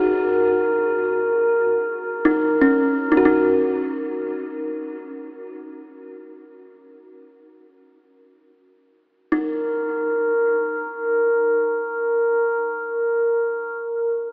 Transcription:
0, 0, Header, 1, 3, 480
1, 0, Start_track
1, 0, Tempo, 500000
1, 13752, End_track
2, 0, Start_track
2, 0, Title_t, "Glass harmonica"
2, 0, Program_c, 0, 92
2, 0, Note_on_c, 0, 70, 48
2, 3324, Note_off_c, 0, 70, 0
2, 8940, Note_on_c, 0, 70, 48
2, 13217, Note_off_c, 0, 70, 0
2, 13752, End_track
3, 0, Start_track
3, 0, Title_t, "Kalimba"
3, 0, Program_c, 1, 108
3, 0, Note_on_c, 1, 66, 78
3, 2122, Note_off_c, 1, 66, 0
3, 2161, Note_on_c, 1, 63, 70
3, 2510, Note_on_c, 1, 61, 63
3, 2527, Note_off_c, 1, 63, 0
3, 2993, Note_on_c, 1, 63, 66
3, 3000, Note_off_c, 1, 61, 0
3, 3046, Note_on_c, 1, 66, 57
3, 3053, Note_off_c, 1, 63, 0
3, 3117, Note_off_c, 1, 66, 0
3, 3122, Note_on_c, 1, 63, 67
3, 4917, Note_off_c, 1, 63, 0
3, 8947, Note_on_c, 1, 63, 58
3, 13224, Note_off_c, 1, 63, 0
3, 13752, End_track
0, 0, End_of_file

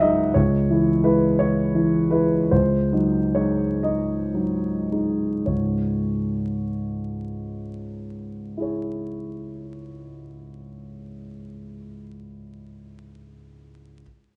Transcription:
0, 0, Header, 1, 2, 480
1, 0, Start_track
1, 0, Key_signature, 4, "minor"
1, 0, Tempo, 686499
1, 254, Time_signature, 6, 3, 24, 8
1, 1221, Tempo, 771208
1, 1701, Tempo, 864553
1, 2181, Tempo, 967742
1, 2661, Tempo, 1111111
1, 3141, Tempo, 1038062
1, 5541, Tempo, 1071429
1, 7203, End_track
2, 0, Start_track
2, 0, Title_t, "Grand piano"
2, 0, Program_c, 0, 0
2, 0, Control_c, 0, 64, 127
2, 0, Note_on_c, 0, 37, 40
2, 0, Note_on_c, 0, 54, 33
2, 0, Note_on_c, 0, 56, 32
2, 0, Note_on_c, 0, 63, 32
2, 0, Note_on_c, 0, 72, 63
2, 0, Note_on_c, 0, 75, 62
2, 0, Note_on_c, 0, 76, 66
2, 0, Note_on_c, 0, 78, 73
2, 5, Note_off_c, 0, 75, 0
2, 5, Note_on_c, 0, 75, 67
2, 16, Note_off_c, 0, 56, 0
2, 16, Note_off_c, 0, 63, 0
2, 16, Note_on_c, 0, 56, 30
2, 16, Note_on_c, 0, 63, 35
2, 224, Note_off_c, 0, 37, 0
2, 228, Note_off_c, 0, 56, 0
2, 228, Note_off_c, 0, 63, 0
2, 239, Note_on_c, 0, 73, 61
2, 246, Note_off_c, 0, 75, 0
2, 247, Note_on_c, 0, 37, 43
2, 267, Control_c, 0, 64, 0
2, 268, Note_off_c, 0, 54, 0
2, 271, Note_off_c, 0, 76, 0
2, 271, Note_off_c, 0, 78, 0
2, 275, Note_off_c, 0, 72, 0
2, 369, Control_c, 0, 64, 127
2, 492, Note_on_c, 0, 52, 29
2, 495, Note_on_c, 0, 64, 33
2, 709, Note_off_c, 0, 52, 0
2, 710, Note_off_c, 0, 64, 0
2, 726, Note_off_c, 0, 73, 0
2, 726, Note_on_c, 0, 71, 58
2, 730, Note_on_c, 0, 56, 31
2, 733, Note_on_c, 0, 64, 33
2, 948, Note_off_c, 0, 56, 0
2, 950, Note_off_c, 0, 64, 0
2, 971, Note_off_c, 0, 71, 0
2, 971, Note_on_c, 0, 73, 62
2, 976, Note_on_c, 0, 64, 33
2, 977, Note_on_c, 0, 56, 33
2, 1198, Note_off_c, 0, 56, 0
2, 1198, Note_off_c, 0, 64, 0
2, 1222, Note_on_c, 0, 52, 30
2, 1223, Note_on_c, 0, 64, 32
2, 1431, Note_off_c, 0, 52, 0
2, 1431, Note_off_c, 0, 64, 0
2, 1444, Note_on_c, 0, 71, 53
2, 1448, Note_on_c, 0, 56, 29
2, 1452, Note_off_c, 0, 73, 0
2, 1454, Note_on_c, 0, 64, 32
2, 1672, Note_off_c, 0, 37, 0
2, 1673, Note_off_c, 0, 56, 0
2, 1676, Note_off_c, 0, 64, 0
2, 1696, Note_off_c, 0, 71, 0
2, 1698, Note_on_c, 0, 72, 57
2, 1701, Note_on_c, 0, 37, 40
2, 1712, Control_c, 0, 64, 0
2, 1817, Control_c, 0, 64, 127
2, 1927, Note_on_c, 0, 54, 27
2, 1929, Note_on_c, 0, 63, 31
2, 2155, Note_off_c, 0, 54, 0
2, 2156, Note_off_c, 0, 63, 0
2, 2161, Note_on_c, 0, 73, 51
2, 2163, Note_on_c, 0, 56, 28
2, 2172, Note_on_c, 0, 63, 29
2, 2180, Note_off_c, 0, 72, 0
2, 2384, Note_off_c, 0, 56, 0
2, 2388, Note_off_c, 0, 63, 0
2, 2403, Note_off_c, 0, 73, 0
2, 2404, Note_on_c, 0, 75, 51
2, 2409, Note_on_c, 0, 56, 25
2, 2411, Note_on_c, 0, 63, 29
2, 2640, Note_off_c, 0, 56, 0
2, 2641, Note_off_c, 0, 63, 0
2, 2657, Note_off_c, 0, 75, 0
2, 2657, Note_on_c, 0, 54, 25
2, 2661, Note_on_c, 0, 63, 26
2, 2884, Note_off_c, 0, 54, 0
2, 2886, Note_off_c, 0, 63, 0
2, 2907, Note_on_c, 0, 56, 24
2, 2908, Note_on_c, 0, 63, 26
2, 3124, Note_off_c, 0, 37, 0
2, 3126, Note_off_c, 0, 56, 0
2, 3127, Note_off_c, 0, 63, 0
2, 3141, Note_on_c, 0, 73, 34
2, 3144, Note_on_c, 0, 37, 27
2, 3144, Note_on_c, 0, 44, 29
2, 3155, Control_c, 0, 64, 0
2, 3275, Control_c, 0, 64, 127
2, 4581, Note_on_c, 0, 64, 21
2, 4592, Note_on_c, 0, 68, 23
2, 4595, Note_off_c, 0, 73, 0
2, 4602, Note_on_c, 0, 73, 22
2, 4833, Note_off_c, 0, 37, 0
2, 4833, Note_off_c, 0, 44, 0
2, 6247, Note_off_c, 0, 64, 0
2, 6258, Note_off_c, 0, 68, 0
2, 6268, Note_off_c, 0, 73, 0
2, 7051, Control_c, 0, 64, 0
2, 7203, End_track
0, 0, End_of_file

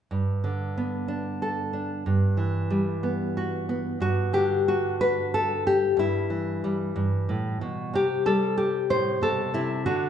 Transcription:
0, 0, Header, 1, 2, 480
1, 0, Start_track
1, 0, Key_signature, 1, "major"
1, 0, Tempo, 649351
1, 85, Time_signature, 6, 3, 24, 8
1, 7461, End_track
2, 0, Start_track
2, 0, Title_t, "Nylon-string guitar"
2, 0, Program_c, 0, 24
2, 81, Note_on_c, 0, 43, 55
2, 324, Note_on_c, 0, 50, 55
2, 573, Note_on_c, 0, 59, 51
2, 800, Note_on_c, 0, 62, 51
2, 1050, Note_on_c, 0, 69, 44
2, 1272, Note_off_c, 0, 62, 0
2, 1280, Note_on_c, 0, 62, 50
2, 1491, Note_off_c, 0, 62, 0
2, 1495, Note_off_c, 0, 69, 0
2, 1519, Note_off_c, 0, 43, 0
2, 1519, Note_off_c, 0, 50, 0
2, 1522, Note_on_c, 0, 43, 60
2, 1753, Note_on_c, 0, 52, 53
2, 1996, Note_off_c, 0, 59, 0
2, 1999, Note_on_c, 0, 55, 54
2, 2241, Note_on_c, 0, 59, 50
2, 2491, Note_on_c, 0, 66, 50
2, 2719, Note_off_c, 0, 59, 0
2, 2728, Note_on_c, 0, 59, 56
2, 2934, Note_off_c, 0, 52, 0
2, 2938, Note_off_c, 0, 43, 0
2, 2941, Note_off_c, 0, 66, 0
2, 2960, Note_on_c, 0, 43, 60
2, 2965, Note_off_c, 0, 59, 0
2, 2968, Note_on_c, 0, 66, 79
2, 3201, Note_on_c, 0, 50, 55
2, 3206, Note_on_c, 0, 67, 84
2, 3451, Note_off_c, 0, 66, 0
2, 3461, Note_on_c, 0, 66, 79
2, 3691, Note_off_c, 0, 67, 0
2, 3702, Note_on_c, 0, 71, 93
2, 3941, Note_off_c, 0, 71, 0
2, 3948, Note_on_c, 0, 69, 84
2, 4184, Note_off_c, 0, 66, 0
2, 4184, Note_off_c, 0, 69, 0
2, 4190, Note_on_c, 0, 67, 84
2, 4387, Note_off_c, 0, 43, 0
2, 4411, Note_on_c, 0, 43, 63
2, 4417, Note_off_c, 0, 50, 0
2, 4419, Note_off_c, 0, 55, 0
2, 4425, Note_off_c, 0, 67, 0
2, 4431, Note_on_c, 0, 64, 78
2, 4657, Note_on_c, 0, 52, 59
2, 4908, Note_on_c, 0, 55, 43
2, 5133, Note_off_c, 0, 43, 0
2, 5142, Note_on_c, 0, 43, 57
2, 5384, Note_off_c, 0, 43, 0
2, 5388, Note_on_c, 0, 45, 57
2, 5624, Note_off_c, 0, 45, 0
2, 5627, Note_on_c, 0, 47, 60
2, 5833, Note_off_c, 0, 52, 0
2, 5864, Note_off_c, 0, 47, 0
2, 5866, Note_on_c, 0, 48, 62
2, 5868, Note_off_c, 0, 64, 0
2, 5880, Note_on_c, 0, 67, 89
2, 6095, Note_off_c, 0, 55, 0
2, 6103, Note_off_c, 0, 67, 0
2, 6103, Note_on_c, 0, 55, 66
2, 6106, Note_on_c, 0, 69, 93
2, 6336, Note_off_c, 0, 69, 0
2, 6339, Note_on_c, 0, 67, 80
2, 6578, Note_on_c, 0, 45, 54
2, 6581, Note_on_c, 0, 72, 92
2, 6808, Note_off_c, 0, 45, 0
2, 6811, Note_on_c, 0, 47, 56
2, 6813, Note_off_c, 0, 67, 0
2, 6820, Note_on_c, 0, 69, 91
2, 7040, Note_off_c, 0, 48, 0
2, 7046, Note_off_c, 0, 47, 0
2, 7049, Note_on_c, 0, 48, 56
2, 7052, Note_off_c, 0, 72, 0
2, 7055, Note_on_c, 0, 64, 81
2, 7284, Note_off_c, 0, 69, 0
2, 7287, Note_on_c, 0, 50, 63
2, 7287, Note_on_c, 0, 66, 81
2, 7288, Note_off_c, 0, 48, 0
2, 7290, Note_off_c, 0, 55, 0
2, 7291, Note_off_c, 0, 64, 0
2, 7293, Note_on_c, 0, 62, 45
2, 7461, Note_off_c, 0, 50, 0
2, 7461, Note_off_c, 0, 62, 0
2, 7461, Note_off_c, 0, 66, 0
2, 7461, End_track
0, 0, End_of_file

